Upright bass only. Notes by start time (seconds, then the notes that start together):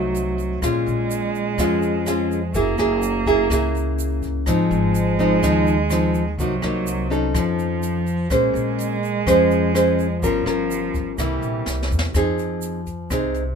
Already playing: C2
0.62 A#1
0.87 A#1
1.58 F2
2.54 F#1
2.79 F#1
3.51 C#2
4.46 G#1
4.71 G#1
5.42 D#2
6.38 C2
6.63 C2
7.35 F2
8.30 A#1
8.54 A#1
9.27 F2
10.22 G1
10.46 G1
11.18 C2
11.42 A#1
11.66 C2
11.91 E2
12.14 F2
13.11 C2